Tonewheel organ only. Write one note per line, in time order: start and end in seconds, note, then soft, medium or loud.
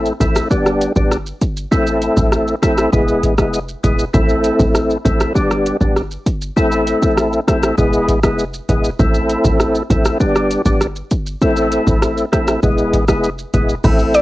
0.00 0.13 A3 medium
0.00 0.13 C4 medium
0.00 0.13 E4 medium
0.00 0.13 A4 loud
0.21 0.48 A3 medium
0.21 0.48 C4 medium
0.21 0.49 E4 medium
0.21 0.49 A4 medium
0.50 0.92 G3 medium
0.50 0.92 B3 medium
0.50 0.93 D4 medium
0.50 0.93 G4 loud
0.96 1.17 G3 medium
0.96 1.17 B3 medium
0.96 1.17 D4 medium
0.96 1.17 G4 medium
1.71 2.55 A3 medium
1.71 2.55 C4 medium
1.71 2.55 E4 medium
1.71 2.56 A4 loud
2.62 2.90 A3 medium
2.62 2.90 C4 medium
2.62 2.91 E4 medium
2.62 2.91 A4 medium
2.92 3.34 G#3 medium
2.92 3.35 B3 medium
2.92 3.35 E4 medium
2.92 3.35 G#4 loud
3.37 3.59 G#3 medium
3.37 3.59 B3 medium
3.37 3.59 E4 medium
3.37 3.60 G#4 medium
3.83 4.05 G#3 medium
3.83 4.05 B3 medium
3.83 4.05 E4 medium
3.83 4.05 G#4 medium
4.13 4.98 A3 medium
4.13 4.98 C4 medium
4.13 4.98 E4 medium
4.13 4.98 A4 loud
5.05 5.33 A3 medium
5.05 5.33 C4 medium
5.05 5.33 E4 medium
5.05 5.33 A4 medium
5.35 5.77 G3 medium
5.35 5.77 B3 medium
5.35 5.77 D4 medium
5.35 5.77 G4 loud
5.81 6.02 G3 medium
5.81 6.02 B3 medium
5.81 6.02 D4 medium
5.81 6.02 G4 medium
6.56 7.40 A3 medium
6.56 7.40 C4 medium
6.56 7.40 E4 medium
6.56 7.41 A4 loud
7.47 7.75 A3 medium
7.47 7.75 C4 medium
7.47 7.76 E4 medium
7.47 7.76 A4 medium
7.78 8.20 G#3 medium
7.78 8.20 B3 medium
7.78 8.20 E4 medium
7.78 8.20 G#4 medium
8.23 8.45 G#3 medium
8.23 8.45 B3 medium
8.23 8.45 E4 medium
8.23 8.45 G#4 medium
8.69 8.90 G#3 medium
8.69 8.90 B3 medium
8.69 8.90 E4 medium
8.69 8.90 G#4 medium
8.99 9.83 A3 medium
8.99 9.83 C4 medium
8.99 9.83 E4 medium
8.99 9.83 A4 medium
9.90 10.18 A3 medium
9.90 10.18 C4 medium
9.90 10.18 E4 medium
9.90 10.18 A4 medium
10.20 10.62 G3 medium
10.20 10.62 B3 medium
10.20 10.62 D4 medium
10.20 10.62 G4 loud
10.66 10.87 G3 medium
10.66 10.87 B3 medium
10.66 10.87 D4 medium
10.66 10.87 G4 medium
11.42 12.25 A3 medium
11.42 12.25 C4 medium
11.42 12.25 E4 medium
11.42 12.26 A4 loud
12.32 12.60 A3 medium
12.32 12.60 C4 medium
12.32 12.60 E4 medium
12.32 12.60 A4 medium
12.63 13.05 G#3 medium
12.63 13.05 B3 medium
12.63 13.05 E4 medium
12.63 13.05 G#4 loud
13.08 13.29 G#3 medium
13.08 13.30 B3 medium
13.08 13.30 E4 medium
13.08 13.30 G#4 medium
13.54 13.75 G#3 medium
13.54 13.75 B3 medium
13.54 13.75 E4 medium
13.54 13.75 G#4 medium
13.84 14.22 A3 medium
13.84 14.22 C4 medium
13.84 14.22 E4 medium
13.84 14.22 A4 loud